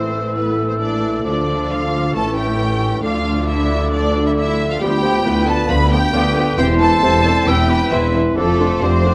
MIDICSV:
0, 0, Header, 1, 10, 480
1, 0, Start_track
1, 0, Tempo, 446761
1, 1338, Time_signature, 4, 2, 24, 8
1, 9824, End_track
2, 0, Start_track
2, 0, Title_t, "Flute"
2, 0, Program_c, 0, 73
2, 0, Note_on_c, 0, 88, 43
2, 1301, Note_off_c, 0, 88, 0
2, 1340, Note_on_c, 0, 86, 45
2, 2303, Note_on_c, 0, 85, 49
2, 2319, Note_off_c, 0, 86, 0
2, 3261, Note_off_c, 0, 85, 0
2, 3267, Note_on_c, 0, 86, 49
2, 4871, Note_off_c, 0, 86, 0
2, 5170, Note_on_c, 0, 83, 58
2, 5608, Note_off_c, 0, 83, 0
2, 5636, Note_on_c, 0, 83, 56
2, 6591, Note_on_c, 0, 86, 55
2, 6607, Note_off_c, 0, 83, 0
2, 7072, Note_on_c, 0, 84, 63
2, 7088, Note_off_c, 0, 86, 0
2, 8030, Note_on_c, 0, 88, 66
2, 8046, Note_off_c, 0, 84, 0
2, 8271, Note_on_c, 0, 83, 67
2, 8287, Note_off_c, 0, 88, 0
2, 8507, Note_on_c, 0, 84, 57
2, 8523, Note_off_c, 0, 83, 0
2, 8986, Note_off_c, 0, 84, 0
2, 8992, Note_on_c, 0, 86, 60
2, 9467, Note_off_c, 0, 86, 0
2, 9479, Note_on_c, 0, 86, 54
2, 9824, Note_off_c, 0, 86, 0
2, 9824, End_track
3, 0, Start_track
3, 0, Title_t, "Violin section"
3, 0, Program_c, 1, 48
3, 0, Note_on_c, 1, 72, 60
3, 356, Note_off_c, 1, 72, 0
3, 373, Note_on_c, 1, 71, 57
3, 726, Note_off_c, 1, 71, 0
3, 742, Note_on_c, 1, 72, 49
3, 788, Note_off_c, 1, 72, 0
3, 862, Note_on_c, 1, 74, 61
3, 1334, Note_off_c, 1, 74, 0
3, 1347, Note_on_c, 1, 74, 63
3, 1816, Note_off_c, 1, 74, 0
3, 1840, Note_on_c, 1, 77, 68
3, 2310, Note_off_c, 1, 77, 0
3, 2310, Note_on_c, 1, 81, 74
3, 2541, Note_off_c, 1, 81, 0
3, 2541, Note_on_c, 1, 79, 74
3, 3245, Note_off_c, 1, 79, 0
3, 3266, Note_on_c, 1, 77, 69
3, 3729, Note_off_c, 1, 77, 0
3, 3734, Note_on_c, 1, 76, 77
3, 4203, Note_off_c, 1, 76, 0
3, 4216, Note_on_c, 1, 74, 73
3, 4566, Note_off_c, 1, 74, 0
3, 4582, Note_on_c, 1, 76, 70
3, 4628, Note_off_c, 1, 76, 0
3, 4693, Note_on_c, 1, 76, 84
3, 5041, Note_off_c, 1, 76, 0
3, 5052, Note_on_c, 1, 77, 64
3, 5167, Note_off_c, 1, 77, 0
3, 5171, Note_on_c, 1, 79, 86
3, 5877, Note_off_c, 1, 79, 0
3, 5880, Note_on_c, 1, 81, 91
3, 6110, Note_on_c, 1, 83, 100
3, 6114, Note_off_c, 1, 81, 0
3, 6350, Note_off_c, 1, 83, 0
3, 6354, Note_on_c, 1, 79, 97
3, 7053, Note_off_c, 1, 79, 0
3, 7066, Note_on_c, 1, 79, 88
3, 7152, Note_off_c, 1, 79, 0
3, 7315, Note_on_c, 1, 81, 106
3, 8019, Note_off_c, 1, 81, 0
3, 8037, Note_on_c, 1, 79, 95
3, 8507, Note_on_c, 1, 76, 80
3, 8511, Note_off_c, 1, 79, 0
3, 8748, Note_off_c, 1, 76, 0
3, 8987, Note_on_c, 1, 69, 87
3, 9440, Note_off_c, 1, 69, 0
3, 9471, Note_on_c, 1, 72, 91
3, 9824, Note_off_c, 1, 72, 0
3, 9824, End_track
4, 0, Start_track
4, 0, Title_t, "Clarinet"
4, 0, Program_c, 2, 71
4, 0, Note_on_c, 2, 69, 48
4, 3217, Note_off_c, 2, 69, 0
4, 3254, Note_on_c, 2, 69, 57
4, 5124, Note_off_c, 2, 69, 0
4, 5156, Note_on_c, 2, 67, 60
4, 5631, Note_on_c, 2, 71, 61
4, 5647, Note_off_c, 2, 67, 0
4, 6402, Note_off_c, 2, 71, 0
4, 6585, Note_on_c, 2, 71, 59
4, 7070, Note_on_c, 2, 72, 63
4, 7086, Note_off_c, 2, 71, 0
4, 7554, Note_off_c, 2, 72, 0
4, 7560, Note_on_c, 2, 72, 66
4, 8031, Note_on_c, 2, 71, 68
4, 8048, Note_off_c, 2, 72, 0
4, 8985, Note_off_c, 2, 71, 0
4, 8992, Note_on_c, 2, 69, 67
4, 9231, Note_on_c, 2, 65, 63
4, 9247, Note_off_c, 2, 69, 0
4, 9824, Note_off_c, 2, 65, 0
4, 9824, End_track
5, 0, Start_track
5, 0, Title_t, "Violin section"
5, 0, Program_c, 3, 48
5, 0, Note_on_c, 3, 60, 54
5, 358, Note_off_c, 3, 60, 0
5, 365, Note_on_c, 3, 59, 51
5, 729, Note_off_c, 3, 59, 0
5, 730, Note_on_c, 3, 60, 46
5, 851, Note_off_c, 3, 60, 0
5, 853, Note_on_c, 3, 62, 58
5, 1327, Note_off_c, 3, 62, 0
5, 1340, Note_on_c, 3, 62, 55
5, 1813, Note_off_c, 3, 62, 0
5, 1822, Note_on_c, 3, 65, 59
5, 2301, Note_off_c, 3, 65, 0
5, 2304, Note_on_c, 3, 69, 61
5, 2538, Note_off_c, 3, 69, 0
5, 2541, Note_on_c, 3, 67, 58
5, 3245, Note_off_c, 3, 67, 0
5, 3260, Note_on_c, 3, 65, 62
5, 3726, Note_off_c, 3, 65, 0
5, 3740, Note_on_c, 3, 64, 63
5, 4216, Note_off_c, 3, 64, 0
5, 4216, Note_on_c, 3, 62, 64
5, 4566, Note_off_c, 3, 62, 0
5, 4578, Note_on_c, 3, 64, 62
5, 4680, Note_off_c, 3, 64, 0
5, 4693, Note_on_c, 3, 64, 77
5, 5041, Note_off_c, 3, 64, 0
5, 5044, Note_on_c, 3, 65, 55
5, 5161, Note_off_c, 3, 65, 0
5, 5161, Note_on_c, 3, 67, 78
5, 5872, Note_off_c, 3, 67, 0
5, 5879, Note_on_c, 3, 69, 69
5, 5965, Note_off_c, 3, 69, 0
5, 6113, Note_on_c, 3, 71, 88
5, 6346, Note_off_c, 3, 71, 0
5, 6352, Note_on_c, 3, 67, 76
5, 7053, Note_off_c, 3, 67, 0
5, 7066, Note_on_c, 3, 67, 85
5, 7305, Note_off_c, 3, 67, 0
5, 7311, Note_on_c, 3, 69, 85
5, 8017, Note_off_c, 3, 69, 0
5, 8032, Note_on_c, 3, 67, 82
5, 8506, Note_on_c, 3, 64, 73
5, 8509, Note_off_c, 3, 67, 0
5, 8747, Note_off_c, 3, 64, 0
5, 8992, Note_on_c, 3, 57, 76
5, 9443, Note_off_c, 3, 57, 0
5, 9478, Note_on_c, 3, 60, 82
5, 9824, Note_off_c, 3, 60, 0
5, 9824, End_track
6, 0, Start_track
6, 0, Title_t, "French horn section"
6, 0, Program_c, 4, 60
6, 0, Note_on_c, 4, 57, 50
6, 0, Note_on_c, 4, 64, 45
6, 1301, Note_off_c, 4, 64, 0
6, 1333, Note_on_c, 4, 65, 48
6, 2279, Note_off_c, 4, 65, 0
6, 2292, Note_on_c, 4, 61, 50
6, 3217, Note_off_c, 4, 57, 0
6, 3245, Note_on_c, 4, 62, 60
6, 3249, Note_on_c, 4, 57, 53
6, 3256, Note_off_c, 4, 61, 0
6, 4975, Note_off_c, 4, 57, 0
6, 4975, Note_off_c, 4, 62, 0
6, 5158, Note_on_c, 4, 59, 65
6, 5161, Note_on_c, 4, 65, 66
6, 7027, Note_off_c, 4, 59, 0
6, 7029, Note_off_c, 4, 65, 0
6, 7071, Note_on_c, 4, 60, 69
6, 7072, Note_on_c, 4, 64, 67
6, 8954, Note_off_c, 4, 60, 0
6, 8993, Note_off_c, 4, 64, 0
6, 8999, Note_on_c, 4, 65, 64
6, 9003, Note_on_c, 4, 57, 67
6, 9824, Note_off_c, 4, 57, 0
6, 9824, Note_off_c, 4, 65, 0
6, 9824, End_track
7, 0, Start_track
7, 0, Title_t, "Viola section"
7, 0, Program_c, 5, 48
7, 0, Note_on_c, 5, 52, 39
7, 0, Note_on_c, 5, 57, 44
7, 1287, Note_off_c, 5, 52, 0
7, 1336, Note_on_c, 5, 53, 43
7, 2257, Note_off_c, 5, 53, 0
7, 2258, Note_off_c, 5, 57, 0
7, 2309, Note_on_c, 5, 52, 54
7, 2310, Note_on_c, 5, 61, 52
7, 3221, Note_off_c, 5, 52, 0
7, 3222, Note_off_c, 5, 61, 0
7, 3257, Note_on_c, 5, 53, 51
7, 3258, Note_on_c, 5, 62, 52
7, 5120, Note_off_c, 5, 53, 0
7, 5121, Note_off_c, 5, 62, 0
7, 5163, Note_on_c, 5, 59, 58
7, 5164, Note_on_c, 5, 53, 62
7, 5249, Note_off_c, 5, 59, 0
7, 5250, Note_off_c, 5, 53, 0
7, 5395, Note_on_c, 5, 53, 55
7, 5398, Note_on_c, 5, 59, 55
7, 5481, Note_off_c, 5, 53, 0
7, 5484, Note_off_c, 5, 59, 0
7, 5638, Note_on_c, 5, 59, 58
7, 5639, Note_on_c, 5, 53, 52
7, 5724, Note_off_c, 5, 59, 0
7, 5725, Note_off_c, 5, 53, 0
7, 5872, Note_on_c, 5, 59, 56
7, 5873, Note_on_c, 5, 53, 55
7, 5958, Note_off_c, 5, 59, 0
7, 5959, Note_off_c, 5, 53, 0
7, 6107, Note_on_c, 5, 53, 66
7, 6107, Note_on_c, 5, 59, 64
7, 6193, Note_off_c, 5, 53, 0
7, 6193, Note_off_c, 5, 59, 0
7, 6345, Note_on_c, 5, 53, 55
7, 6346, Note_on_c, 5, 59, 58
7, 6431, Note_off_c, 5, 53, 0
7, 6432, Note_off_c, 5, 59, 0
7, 6591, Note_on_c, 5, 53, 67
7, 6593, Note_on_c, 5, 59, 64
7, 6677, Note_off_c, 5, 53, 0
7, 6679, Note_off_c, 5, 59, 0
7, 6825, Note_on_c, 5, 59, 56
7, 6828, Note_on_c, 5, 53, 54
7, 6911, Note_off_c, 5, 59, 0
7, 6914, Note_off_c, 5, 53, 0
7, 7062, Note_on_c, 5, 60, 66
7, 7063, Note_on_c, 5, 52, 64
7, 7148, Note_off_c, 5, 60, 0
7, 7149, Note_off_c, 5, 52, 0
7, 7300, Note_on_c, 5, 60, 59
7, 7304, Note_on_c, 5, 52, 62
7, 7386, Note_off_c, 5, 60, 0
7, 7390, Note_off_c, 5, 52, 0
7, 7540, Note_on_c, 5, 52, 55
7, 7542, Note_on_c, 5, 60, 55
7, 7626, Note_off_c, 5, 52, 0
7, 7628, Note_off_c, 5, 60, 0
7, 7781, Note_on_c, 5, 52, 59
7, 7785, Note_on_c, 5, 60, 58
7, 7867, Note_off_c, 5, 52, 0
7, 7871, Note_off_c, 5, 60, 0
7, 8021, Note_on_c, 5, 52, 65
7, 8025, Note_on_c, 5, 60, 68
7, 8107, Note_off_c, 5, 52, 0
7, 8111, Note_off_c, 5, 60, 0
7, 8262, Note_on_c, 5, 60, 57
7, 8263, Note_on_c, 5, 52, 59
7, 8348, Note_off_c, 5, 60, 0
7, 8349, Note_off_c, 5, 52, 0
7, 8499, Note_on_c, 5, 52, 61
7, 8500, Note_on_c, 5, 60, 59
7, 8585, Note_off_c, 5, 52, 0
7, 8586, Note_off_c, 5, 60, 0
7, 8747, Note_on_c, 5, 52, 55
7, 8748, Note_on_c, 5, 60, 53
7, 8833, Note_off_c, 5, 52, 0
7, 8834, Note_off_c, 5, 60, 0
7, 8990, Note_on_c, 5, 50, 61
7, 8991, Note_on_c, 5, 62, 57
7, 9075, Note_off_c, 5, 50, 0
7, 9077, Note_off_c, 5, 62, 0
7, 9234, Note_on_c, 5, 50, 57
7, 9235, Note_on_c, 5, 62, 58
7, 9320, Note_off_c, 5, 50, 0
7, 9321, Note_off_c, 5, 62, 0
7, 9468, Note_on_c, 5, 62, 51
7, 9473, Note_on_c, 5, 50, 51
7, 9554, Note_off_c, 5, 62, 0
7, 9559, Note_off_c, 5, 50, 0
7, 9712, Note_on_c, 5, 62, 51
7, 9715, Note_on_c, 5, 50, 54
7, 9798, Note_off_c, 5, 62, 0
7, 9801, Note_off_c, 5, 50, 0
7, 9824, End_track
8, 0, Start_track
8, 0, Title_t, "Bassoon"
8, 0, Program_c, 6, 70
8, 0, Note_on_c, 6, 52, 44
8, 1294, Note_off_c, 6, 52, 0
8, 1336, Note_on_c, 6, 53, 47
8, 2298, Note_on_c, 6, 52, 46
8, 2314, Note_off_c, 6, 53, 0
8, 3251, Note_off_c, 6, 52, 0
8, 3257, Note_on_c, 6, 50, 53
8, 5125, Note_off_c, 6, 50, 0
8, 5170, Note_on_c, 6, 55, 66
8, 5403, Note_on_c, 6, 53, 61
8, 5419, Note_off_c, 6, 55, 0
8, 5639, Note_on_c, 6, 52, 64
8, 5655, Note_off_c, 6, 53, 0
8, 5870, Note_on_c, 6, 50, 62
8, 5886, Note_off_c, 6, 52, 0
8, 6404, Note_off_c, 6, 50, 0
8, 6587, Note_on_c, 6, 50, 59
8, 7058, Note_off_c, 6, 50, 0
8, 7071, Note_on_c, 6, 52, 64
8, 7544, Note_off_c, 6, 52, 0
8, 7552, Note_on_c, 6, 48, 67
8, 7801, Note_on_c, 6, 50, 66
8, 7817, Note_off_c, 6, 48, 0
8, 8039, Note_on_c, 6, 52, 62
8, 8055, Note_off_c, 6, 50, 0
8, 8505, Note_off_c, 6, 52, 0
8, 8512, Note_on_c, 6, 52, 63
8, 8987, Note_on_c, 6, 53, 59
8, 9003, Note_off_c, 6, 52, 0
8, 9473, Note_on_c, 6, 55, 60
8, 9489, Note_off_c, 6, 53, 0
8, 9719, Note_on_c, 6, 53, 59
8, 9735, Note_off_c, 6, 55, 0
8, 9824, Note_off_c, 6, 53, 0
8, 9824, End_track
9, 0, Start_track
9, 0, Title_t, "Cello section"
9, 0, Program_c, 7, 48
9, 0, Note_on_c, 7, 45, 50
9, 1299, Note_off_c, 7, 45, 0
9, 1342, Note_on_c, 7, 50, 54
9, 2284, Note_off_c, 7, 50, 0
9, 2298, Note_on_c, 7, 45, 49
9, 3256, Note_on_c, 7, 38, 62
9, 3259, Note_off_c, 7, 45, 0
9, 5125, Note_off_c, 7, 38, 0
9, 5164, Note_on_c, 7, 38, 67
9, 5582, Note_off_c, 7, 38, 0
9, 5640, Note_on_c, 7, 38, 71
9, 6056, Note_off_c, 7, 38, 0
9, 6114, Note_on_c, 7, 38, 68
9, 6535, Note_off_c, 7, 38, 0
9, 6593, Note_on_c, 7, 38, 69
9, 7014, Note_off_c, 7, 38, 0
9, 7069, Note_on_c, 7, 40, 75
9, 7496, Note_off_c, 7, 40, 0
9, 7559, Note_on_c, 7, 40, 71
9, 7978, Note_off_c, 7, 40, 0
9, 8036, Note_on_c, 7, 40, 66
9, 8454, Note_off_c, 7, 40, 0
9, 8508, Note_on_c, 7, 40, 69
9, 8934, Note_off_c, 7, 40, 0
9, 8995, Note_on_c, 7, 41, 73
9, 9421, Note_off_c, 7, 41, 0
9, 9475, Note_on_c, 7, 41, 70
9, 9824, Note_off_c, 7, 41, 0
9, 9824, End_track
10, 0, Start_track
10, 0, Title_t, "Double bass section"
10, 0, Program_c, 8, 48
10, 0, Note_on_c, 8, 33, 44
10, 1297, Note_off_c, 8, 33, 0
10, 1339, Note_on_c, 8, 38, 49
10, 2283, Note_off_c, 8, 38, 0
10, 2297, Note_on_c, 8, 33, 56
10, 3253, Note_on_c, 8, 38, 54
10, 3258, Note_off_c, 8, 33, 0
10, 5123, Note_off_c, 8, 38, 0
10, 5158, Note_on_c, 8, 38, 65
10, 5578, Note_off_c, 8, 38, 0
10, 5630, Note_on_c, 8, 38, 71
10, 6051, Note_off_c, 8, 38, 0
10, 6107, Note_on_c, 8, 38, 74
10, 6531, Note_off_c, 8, 38, 0
10, 6584, Note_on_c, 8, 38, 73
10, 7009, Note_off_c, 8, 38, 0
10, 7064, Note_on_c, 8, 28, 72
10, 7494, Note_off_c, 8, 28, 0
10, 7548, Note_on_c, 8, 28, 78
10, 7972, Note_off_c, 8, 28, 0
10, 8027, Note_on_c, 8, 28, 76
10, 8449, Note_off_c, 8, 28, 0
10, 8505, Note_on_c, 8, 28, 72
10, 8932, Note_off_c, 8, 28, 0
10, 8991, Note_on_c, 8, 29, 64
10, 9419, Note_off_c, 8, 29, 0
10, 9478, Note_on_c, 8, 29, 68
10, 9824, Note_off_c, 8, 29, 0
10, 9824, End_track
0, 0, End_of_file